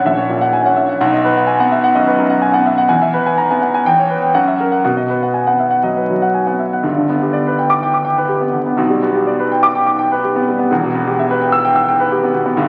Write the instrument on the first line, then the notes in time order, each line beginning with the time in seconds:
grand piano
Already playing: A#1 C#4 C#5 E5 F#5 G#5
0.06 A#1 E5
0.18 C#5
0.29 A#2
0.41 F#5
0.53 G#5
0.65 C#4 F#5
0.76 E5
0.89 F#5
1.01 B1 F#5
1.13 D#5
1.25 B4
1.37 F#5
1.47 G#5
1.60 B3 F#5
1.72 E5
1.84 F#5
1.95 F#2 D#5
2.07 B4
2.18 F#2
2.30 F#5
2.42 G#5
2.53 B3 F#5
2.66 E5
2.78 F#5
2.89 E2 G#5
3.02 E5
3.14 B4
3.26 G#5
3.38 A#5
3.51 B3 G#5
3.62 F#5
3.74 G#5
3.86 E2 G5
3.99 C#5
4.10 B4
4.23 G5
4.34 F#2 F#5
4.47 E5
4.60 A#4
4.72 F#5
4.85 B2 F#5
4.97 D#5
5.10 B4
5.23 F#5
5.34 G#5
5.47 B3 F#5
5.59 E5
5.71 F#5
5.83 F#3 D#5
5.97 B4
6.10 F#3
6.22 F#5
6.34 G#5
6.47 B3 F#5
6.59 E5
6.73 F#5
6.83 G1 G2
6.97 D3
7.09 B3
7.22 G4
7.33 D5
7.47 B4
7.59 G5
7.70 D6
7.83 G5
7.94 D6
8.05 G5
8.18 B4
8.29 G4
8.41 B3
8.53 D3
8.66 B3
8.77 B1 B2
8.90 G3
9.03 B3
9.15 G4
9.27 D5
9.39 B4
9.52 G5
9.63 D6
9.75 G5
9.86 D6
9.99 G5
10.12 B4
10.24 G4
10.36 B3
10.49 G3
10.59 B3
10.71 E1 E2
10.83 B2
10.95 B3
11.07 G4
11.19 E5
11.31 B4
11.42 G5
11.52 E6
11.65 G5
11.76 E6
11.88 G5
12.00 B4
12.12 G4
12.23 B3
12.34 B2
12.46 B3
12.57 G1 G2